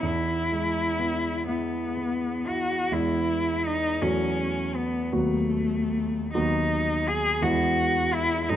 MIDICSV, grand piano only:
0, 0, Header, 1, 2, 480
1, 0, Start_track
1, 0, Key_signature, 4, "major"
1, 0, Tempo, 964630
1, 9, Time_signature, 6, 3, 24, 8
1, 1449, Tempo, 734394
1, 2889, Tempo, 800000
1, 3849, Tempo, 710900
1, 5097, End_track
2, 0, Start_track
2, 0, Title_t, "Grand piano"
2, 0, Program_c, 0, 0
2, 0, Control_c, 0, 64, 127
2, 13, Note_on_c, 0, 40, 35
2, 18, Control_c, 0, 64, 0
2, 126, Control_c, 0, 64, 127
2, 258, Note_on_c, 0, 56, 27
2, 495, Note_on_c, 0, 59, 28
2, 640, Note_off_c, 0, 56, 0
2, 736, Note_on_c, 0, 64, 29
2, 880, Note_off_c, 0, 59, 0
2, 981, Note_on_c, 0, 59, 24
2, 1131, Note_off_c, 0, 64, 0
2, 1232, Note_on_c, 0, 64, 23
2, 1370, Note_off_c, 0, 59, 0
2, 1432, Note_off_c, 0, 40, 0
2, 1445, Note_off_c, 0, 64, 0
2, 1453, Note_on_c, 0, 56, 27
2, 1453, Note_on_c, 0, 64, 28
2, 1454, Note_on_c, 0, 40, 33
2, 1454, Note_on_c, 0, 59, 31
2, 1461, Control_c, 0, 64, 0
2, 1574, Control_c, 0, 64, 127
2, 2151, Note_off_c, 0, 56, 0
2, 2152, Note_off_c, 0, 40, 0
2, 2152, Note_off_c, 0, 59, 0
2, 2152, Note_off_c, 0, 64, 0
2, 2171, Note_on_c, 0, 66, 32
2, 2172, Note_on_c, 0, 40, 38
2, 2174, Note_on_c, 0, 54, 33
2, 2174, Note_on_c, 0, 57, 28
2, 2180, Control_c, 0, 64, 0
2, 2267, Control_c, 0, 64, 127
2, 2868, Note_off_c, 0, 66, 0
2, 2869, Note_off_c, 0, 40, 0
2, 2870, Note_off_c, 0, 54, 0
2, 2870, Note_off_c, 0, 57, 0
2, 2894, Note_on_c, 0, 59, 32
2, 2895, Note_on_c, 0, 54, 30
2, 2896, Note_on_c, 0, 39, 35
2, 2896, Note_on_c, 0, 66, 32
2, 2899, Control_c, 0, 64, 0
2, 3005, Control_c, 0, 64, 127
2, 3601, Note_off_c, 0, 54, 0
2, 3601, Note_off_c, 0, 59, 0
2, 3602, Note_off_c, 0, 39, 0
2, 3602, Note_off_c, 0, 66, 0
2, 3625, Note_on_c, 0, 59, 32
2, 3628, Note_on_c, 0, 54, 29
2, 3628, Note_on_c, 0, 66, 32
2, 3629, Note_on_c, 0, 39, 39
2, 4303, Note_off_c, 0, 59, 0
2, 4305, Note_off_c, 0, 54, 0
2, 4305, Note_off_c, 0, 66, 0
2, 4306, Note_off_c, 0, 39, 0
2, 4324, Note_on_c, 0, 56, 30
2, 4325, Note_on_c, 0, 40, 37
2, 4325, Note_on_c, 0, 59, 34
2, 4325, Note_on_c, 0, 64, 32
2, 4334, Control_c, 0, 64, 0
2, 4429, Control_c, 0, 64, 127
2, 5028, Note_off_c, 0, 56, 0
2, 5028, Note_off_c, 0, 59, 0
2, 5028, Note_off_c, 0, 64, 0
2, 5029, Note_off_c, 0, 40, 0
2, 5050, Note_on_c, 0, 54, 33
2, 5052, Note_on_c, 0, 57, 31
2, 5052, Note_on_c, 0, 63, 33
2, 5054, Note_on_c, 0, 42, 43
2, 5059, Control_c, 0, 64, 0
2, 5097, Note_off_c, 0, 42, 0
2, 5097, Note_off_c, 0, 54, 0
2, 5097, Note_off_c, 0, 57, 0
2, 5097, Note_off_c, 0, 63, 0
2, 5097, End_track
0, 0, End_of_file